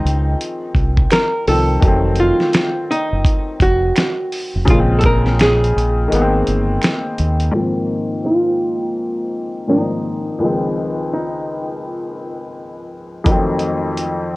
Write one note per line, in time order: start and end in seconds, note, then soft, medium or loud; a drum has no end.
0.00 1.42 D#3 medium
0.00 1.43 F3 medium
0.00 1.44 G#3 medium
0.00 1.45 C4 medium
0.00 1.16 D#4 medium
0.05 0.35 C#2 medium
0.05 closed hi-hat medium
0.41 closed hi-hat medium
0.75 1.05 C2 medium
0.75 kick medium
0.75 closed hi-hat medium
0.98 kick medium
1.11 1.47 A#4 loud
1.11 finger snap medium
1.11 snare loud
1.11 closed hi-hat medium
1.47 1.77 C2 medium
1.47 1.78 D#3 soft
1.47 1.83 F3 soft
1.47 1.84 C4 soft
1.47 2.21 A4 loud
1.47 open hi-hat soft
1.80 2.31 F1 loud
1.80 4.63 D#3 medium
1.80 4.64 F#3 medium
1.80 kick loud
1.80 closed hi-hat medium
1.85 4.66 A3 medium
1.85 4.67 C4 medium
2.16 closed hi-hat medium
2.20 2.90 F4 medium
2.40 snare soft
2.53 finger snap medium
2.53 snare loud
2.53 closed hi-hat medium
2.91 3.62 D#4 medium
2.91 closed hi-hat medium
3.12 3.24 F#1 medium
3.25 kick medium
3.25 closed hi-hat medium
3.60 3.91 F1 medium
3.60 4.65 F#4 medium
3.60 kick medium
3.60 closed hi-hat medium
3.96 finger snap medium
3.96 snare loud
3.96 closed hi-hat medium
4.32 open hi-hat soft
4.55 4.67 F1 medium
4.65 5.71 A#1 loud
4.65 6.07 C#3 medium
4.65 6.08 F3 medium
4.65 kick loud
4.65 closed hi-hat medium
4.70 6.08 G#3 medium
4.70 4.79 A#3 medium
4.70 4.78 F4 medium
4.79 6.14 C4 medium
4.99 5.04 A4 medium
4.99 closed hi-hat medium
5.04 5.41 A#4 medium
5.04 kick medium
5.26 snare soft
5.39 6.80 G#4 medium
5.39 finger snap medium
5.39 snare loud
5.39 closed hi-hat medium
5.64 closed hi-hat soft
5.76 6.06 A#1 medium
5.76 closed hi-hat medium
6.08 7.50 D#3 medium
6.08 7.51 G#3 medium
6.12 6.42 G#1 medium
6.12 7.52 A#3 medium
6.12 6.21 B3 medium
6.12 closed hi-hat medium
6.21 7.56 C4 medium
6.47 6.77 G1 medium
6.47 closed hi-hat medium
6.82 finger snap medium
6.82 snare loud
6.82 closed hi-hat medium
7.18 7.49 D#2 medium
7.18 closed hi-hat medium
7.40 closed hi-hat medium
7.51 9.63 G#2 medium
7.51 9.64 D#3 medium
7.51 9.65 F3 medium
7.57 9.66 A#3 medium
7.57 9.67 C4 medium
8.26 9.69 F4 medium
9.67 10.39 G#2 soft
9.67 10.39 D#3 soft
9.67 10.40 F3 soft
9.67 10.41 A#3 soft
9.67 10.41 C4 soft
9.67 10.68 D#4 medium
10.39 13.21 C#2 medium
10.39 13.22 D#3 medium
10.39 13.23 F3 medium
10.44 13.24 G#3 medium
10.44 13.25 C4 medium
10.68 11.12 C#4 medium
11.13 12.87 D#4 medium
13.24 14.36 F2 medium
13.24 14.36 D#3 medium
13.24 kick loud
13.24 closed hi-hat medium
13.28 14.36 F#3 medium
13.28 14.36 A3 medium
13.28 14.36 C4 medium
13.59 closed hi-hat medium
13.97 closed hi-hat medium